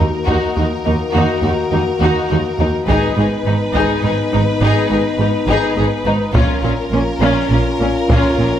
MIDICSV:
0, 0, Header, 1, 10, 480
1, 0, Start_track
1, 0, Tempo, 577478
1, 954, Time_signature, 3, 2, 24, 8
1, 5750, Tempo, 589391
1, 7116, End_track
2, 0, Start_track
2, 0, Title_t, "Violin section"
2, 0, Program_c, 0, 48
2, 0, Note_on_c, 0, 70, 41
2, 2360, Note_off_c, 0, 70, 0
2, 2403, Note_on_c, 0, 71, 49
2, 5243, Note_off_c, 0, 71, 0
2, 5265, Note_on_c, 0, 70, 59
2, 7116, Note_off_c, 0, 70, 0
2, 7116, End_track
3, 0, Start_track
3, 0, Title_t, "Violin section"
3, 0, Program_c, 1, 48
3, 207, Note_on_c, 1, 66, 49
3, 443, Note_off_c, 1, 66, 0
3, 458, Note_on_c, 1, 66, 37
3, 524, Note_off_c, 1, 66, 0
3, 708, Note_on_c, 1, 63, 32
3, 774, Note_off_c, 1, 63, 0
3, 940, Note_on_c, 1, 66, 46
3, 1170, Note_off_c, 1, 66, 0
3, 1182, Note_on_c, 1, 66, 43
3, 1249, Note_off_c, 1, 66, 0
3, 1429, Note_on_c, 1, 63, 37
3, 1495, Note_off_c, 1, 63, 0
3, 1672, Note_on_c, 1, 66, 52
3, 1893, Note_off_c, 1, 66, 0
3, 1903, Note_on_c, 1, 66, 35
3, 1970, Note_off_c, 1, 66, 0
3, 2155, Note_on_c, 1, 63, 46
3, 2221, Note_off_c, 1, 63, 0
3, 2405, Note_on_c, 1, 68, 55
3, 2622, Note_off_c, 1, 68, 0
3, 2656, Note_on_c, 1, 68, 44
3, 2723, Note_off_c, 1, 68, 0
3, 2880, Note_on_c, 1, 63, 43
3, 2946, Note_off_c, 1, 63, 0
3, 3123, Note_on_c, 1, 68, 55
3, 3342, Note_off_c, 1, 68, 0
3, 3374, Note_on_c, 1, 68, 51
3, 3440, Note_off_c, 1, 68, 0
3, 3614, Note_on_c, 1, 63, 47
3, 3681, Note_off_c, 1, 63, 0
3, 3852, Note_on_c, 1, 68, 67
3, 4066, Note_off_c, 1, 68, 0
3, 4093, Note_on_c, 1, 68, 43
3, 4160, Note_off_c, 1, 68, 0
3, 4328, Note_on_c, 1, 63, 44
3, 4394, Note_off_c, 1, 63, 0
3, 4560, Note_on_c, 1, 68, 62
3, 4780, Note_off_c, 1, 68, 0
3, 4801, Note_on_c, 1, 68, 44
3, 4867, Note_off_c, 1, 68, 0
3, 5039, Note_on_c, 1, 63, 54
3, 5106, Note_off_c, 1, 63, 0
3, 5275, Note_on_c, 1, 65, 59
3, 5497, Note_off_c, 1, 65, 0
3, 5514, Note_on_c, 1, 65, 48
3, 5580, Note_off_c, 1, 65, 0
3, 5764, Note_on_c, 1, 61, 40
3, 5829, Note_off_c, 1, 61, 0
3, 5997, Note_on_c, 1, 65, 51
3, 6215, Note_off_c, 1, 65, 0
3, 6242, Note_on_c, 1, 65, 39
3, 6308, Note_off_c, 1, 65, 0
3, 6487, Note_on_c, 1, 61, 47
3, 6552, Note_off_c, 1, 61, 0
3, 6729, Note_on_c, 1, 65, 47
3, 6945, Note_off_c, 1, 65, 0
3, 6957, Note_on_c, 1, 65, 38
3, 7022, Note_off_c, 1, 65, 0
3, 7116, End_track
4, 0, Start_track
4, 0, Title_t, "Viola section"
4, 0, Program_c, 2, 48
4, 2, Note_on_c, 2, 63, 27
4, 69, Note_off_c, 2, 63, 0
4, 229, Note_on_c, 2, 63, 46
4, 455, Note_off_c, 2, 63, 0
4, 480, Note_on_c, 2, 63, 35
4, 546, Note_off_c, 2, 63, 0
4, 715, Note_on_c, 2, 63, 34
4, 782, Note_off_c, 2, 63, 0
4, 959, Note_on_c, 2, 63, 51
4, 1180, Note_off_c, 2, 63, 0
4, 1210, Note_on_c, 2, 63, 37
4, 1277, Note_off_c, 2, 63, 0
4, 1443, Note_on_c, 2, 63, 39
4, 1510, Note_off_c, 2, 63, 0
4, 1686, Note_on_c, 2, 63, 53
4, 1903, Note_off_c, 2, 63, 0
4, 1926, Note_on_c, 2, 63, 39
4, 1993, Note_off_c, 2, 63, 0
4, 2165, Note_on_c, 2, 63, 42
4, 2231, Note_off_c, 2, 63, 0
4, 2401, Note_on_c, 2, 63, 58
4, 2620, Note_off_c, 2, 63, 0
4, 2640, Note_on_c, 2, 63, 38
4, 2707, Note_off_c, 2, 63, 0
4, 2879, Note_on_c, 2, 63, 43
4, 2946, Note_off_c, 2, 63, 0
4, 3115, Note_on_c, 2, 63, 64
4, 3337, Note_off_c, 2, 63, 0
4, 3357, Note_on_c, 2, 63, 45
4, 3423, Note_off_c, 2, 63, 0
4, 3592, Note_on_c, 2, 63, 46
4, 3658, Note_off_c, 2, 63, 0
4, 3842, Note_on_c, 2, 63, 59
4, 4061, Note_off_c, 2, 63, 0
4, 4084, Note_on_c, 2, 63, 44
4, 4150, Note_off_c, 2, 63, 0
4, 4325, Note_on_c, 2, 63, 42
4, 4392, Note_off_c, 2, 63, 0
4, 4558, Note_on_c, 2, 63, 59
4, 4778, Note_off_c, 2, 63, 0
4, 4801, Note_on_c, 2, 63, 48
4, 4867, Note_off_c, 2, 63, 0
4, 5039, Note_on_c, 2, 63, 51
4, 5105, Note_off_c, 2, 63, 0
4, 5272, Note_on_c, 2, 61, 52
4, 5495, Note_off_c, 2, 61, 0
4, 5519, Note_on_c, 2, 61, 46
4, 5586, Note_off_c, 2, 61, 0
4, 5760, Note_on_c, 2, 61, 46
4, 5825, Note_off_c, 2, 61, 0
4, 5995, Note_on_c, 2, 61, 62
4, 6214, Note_off_c, 2, 61, 0
4, 6236, Note_on_c, 2, 61, 38
4, 6301, Note_off_c, 2, 61, 0
4, 6475, Note_on_c, 2, 61, 37
4, 6540, Note_off_c, 2, 61, 0
4, 6721, Note_on_c, 2, 61, 50
4, 6941, Note_off_c, 2, 61, 0
4, 6954, Note_on_c, 2, 61, 31
4, 7020, Note_off_c, 2, 61, 0
4, 7116, End_track
5, 0, Start_track
5, 0, Title_t, "French horn section"
5, 0, Program_c, 3, 60
5, 0, Note_on_c, 3, 58, 46
5, 0, Note_on_c, 3, 66, 41
5, 2360, Note_off_c, 3, 66, 0
5, 2361, Note_off_c, 3, 58, 0
5, 2385, Note_on_c, 3, 63, 50
5, 2391, Note_on_c, 3, 59, 50
5, 5119, Note_off_c, 3, 59, 0
5, 5119, Note_off_c, 3, 63, 0
5, 5260, Note_on_c, 3, 61, 57
5, 5261, Note_on_c, 3, 65, 58
5, 7116, Note_off_c, 3, 61, 0
5, 7116, Note_off_c, 3, 65, 0
5, 7116, End_track
6, 0, Start_track
6, 0, Title_t, "Timpani"
6, 0, Program_c, 4, 47
6, 0, Note_on_c, 4, 51, 50
6, 193, Note_off_c, 4, 51, 0
6, 7116, End_track
7, 0, Start_track
7, 0, Title_t, "Cello section"
7, 0, Program_c, 5, 48
7, 227, Note_on_c, 5, 39, 46
7, 293, Note_off_c, 5, 39, 0
7, 471, Note_on_c, 5, 39, 35
7, 537, Note_off_c, 5, 39, 0
7, 718, Note_on_c, 5, 39, 38
7, 785, Note_off_c, 5, 39, 0
7, 957, Note_on_c, 5, 39, 51
7, 1024, Note_off_c, 5, 39, 0
7, 1195, Note_on_c, 5, 39, 41
7, 1262, Note_off_c, 5, 39, 0
7, 1441, Note_on_c, 5, 39, 38
7, 1507, Note_off_c, 5, 39, 0
7, 1675, Note_on_c, 5, 39, 47
7, 1741, Note_off_c, 5, 39, 0
7, 1918, Note_on_c, 5, 39, 42
7, 1984, Note_off_c, 5, 39, 0
7, 2154, Note_on_c, 5, 39, 40
7, 2221, Note_off_c, 5, 39, 0
7, 2396, Note_on_c, 5, 44, 57
7, 2463, Note_off_c, 5, 44, 0
7, 2637, Note_on_c, 5, 44, 42
7, 2704, Note_off_c, 5, 44, 0
7, 2874, Note_on_c, 5, 44, 45
7, 2941, Note_off_c, 5, 44, 0
7, 3113, Note_on_c, 5, 44, 55
7, 3179, Note_off_c, 5, 44, 0
7, 3354, Note_on_c, 5, 44, 44
7, 3421, Note_off_c, 5, 44, 0
7, 3601, Note_on_c, 5, 44, 46
7, 3668, Note_off_c, 5, 44, 0
7, 3835, Note_on_c, 5, 44, 69
7, 3902, Note_off_c, 5, 44, 0
7, 4075, Note_on_c, 5, 44, 49
7, 4141, Note_off_c, 5, 44, 0
7, 4316, Note_on_c, 5, 44, 48
7, 4382, Note_off_c, 5, 44, 0
7, 4548, Note_on_c, 5, 44, 60
7, 4615, Note_off_c, 5, 44, 0
7, 4792, Note_on_c, 5, 44, 43
7, 4858, Note_off_c, 5, 44, 0
7, 5031, Note_on_c, 5, 44, 49
7, 5097, Note_off_c, 5, 44, 0
7, 5276, Note_on_c, 5, 46, 68
7, 5343, Note_off_c, 5, 46, 0
7, 5515, Note_on_c, 5, 46, 47
7, 5582, Note_off_c, 5, 46, 0
7, 5756, Note_on_c, 5, 46, 42
7, 5822, Note_off_c, 5, 46, 0
7, 5993, Note_on_c, 5, 46, 60
7, 6058, Note_off_c, 5, 46, 0
7, 6229, Note_on_c, 5, 46, 41
7, 6294, Note_off_c, 5, 46, 0
7, 6468, Note_on_c, 5, 46, 41
7, 6533, Note_off_c, 5, 46, 0
7, 6708, Note_on_c, 5, 46, 52
7, 6773, Note_off_c, 5, 46, 0
7, 6946, Note_on_c, 5, 46, 34
7, 7011, Note_off_c, 5, 46, 0
7, 7116, End_track
8, 0, Start_track
8, 0, Title_t, "Double bass section"
8, 0, Program_c, 6, 48
8, 230, Note_on_c, 6, 39, 50
8, 296, Note_off_c, 6, 39, 0
8, 472, Note_on_c, 6, 39, 40
8, 539, Note_off_c, 6, 39, 0
8, 710, Note_on_c, 6, 39, 36
8, 777, Note_off_c, 6, 39, 0
8, 950, Note_on_c, 6, 39, 53
8, 1016, Note_off_c, 6, 39, 0
8, 1192, Note_on_c, 6, 39, 35
8, 1259, Note_off_c, 6, 39, 0
8, 1430, Note_on_c, 6, 39, 35
8, 1497, Note_off_c, 6, 39, 0
8, 1669, Note_on_c, 6, 39, 59
8, 1736, Note_off_c, 6, 39, 0
8, 1908, Note_on_c, 6, 39, 45
8, 1975, Note_off_c, 6, 39, 0
8, 2153, Note_on_c, 6, 39, 41
8, 2219, Note_off_c, 6, 39, 0
8, 2393, Note_on_c, 6, 32, 66
8, 2459, Note_off_c, 6, 32, 0
8, 2631, Note_on_c, 6, 32, 42
8, 2697, Note_off_c, 6, 32, 0
8, 2871, Note_on_c, 6, 32, 41
8, 2937, Note_off_c, 6, 32, 0
8, 3114, Note_on_c, 6, 32, 63
8, 3181, Note_off_c, 6, 32, 0
8, 3354, Note_on_c, 6, 32, 48
8, 3420, Note_off_c, 6, 32, 0
8, 3599, Note_on_c, 6, 32, 50
8, 3666, Note_off_c, 6, 32, 0
8, 3834, Note_on_c, 6, 32, 68
8, 3900, Note_off_c, 6, 32, 0
8, 4076, Note_on_c, 6, 32, 43
8, 4142, Note_off_c, 6, 32, 0
8, 4312, Note_on_c, 6, 32, 43
8, 4378, Note_off_c, 6, 32, 0
8, 4547, Note_on_c, 6, 32, 69
8, 4614, Note_off_c, 6, 32, 0
8, 4793, Note_on_c, 6, 32, 49
8, 4859, Note_off_c, 6, 32, 0
8, 5032, Note_on_c, 6, 32, 46
8, 5098, Note_off_c, 6, 32, 0
8, 5266, Note_on_c, 6, 34, 73
8, 5332, Note_off_c, 6, 34, 0
8, 5511, Note_on_c, 6, 34, 41
8, 5577, Note_off_c, 6, 34, 0
8, 5744, Note_on_c, 6, 34, 43
8, 5809, Note_off_c, 6, 34, 0
8, 5982, Note_on_c, 6, 34, 60
8, 6047, Note_off_c, 6, 34, 0
8, 6222, Note_on_c, 6, 34, 46
8, 6287, Note_off_c, 6, 34, 0
8, 6458, Note_on_c, 6, 34, 40
8, 6523, Note_off_c, 6, 34, 0
8, 6705, Note_on_c, 6, 34, 54
8, 6770, Note_off_c, 6, 34, 0
8, 6946, Note_on_c, 6, 34, 37
8, 7011, Note_off_c, 6, 34, 0
8, 7116, End_track
9, 0, Start_track
9, 0, Title_t, "Cymbal swell"
9, 0, Program_c, 7, 119
9, 6708, Note_on_c, 7, 60, 46
9, 7116, Note_off_c, 7, 60, 0
9, 7116, End_track
10, 0, Start_track
10, 0, Title_t, "Taiko and cinematic ensemble drums"
10, 230, Note_on_c, 9, 41, 34
10, 313, Note_off_c, 9, 41, 0
10, 2397, Note_on_c, 9, 41, 48
10, 2480, Note_off_c, 9, 41, 0
10, 3112, Note_on_c, 9, 41, 36
10, 3195, Note_off_c, 9, 41, 0
10, 5277, Note_on_c, 9, 41, 81
10, 5360, Note_off_c, 9, 41, 0
10, 6710, Note_on_c, 9, 41, 70
10, 6792, Note_off_c, 9, 41, 0
10, 7116, End_track
0, 0, End_of_file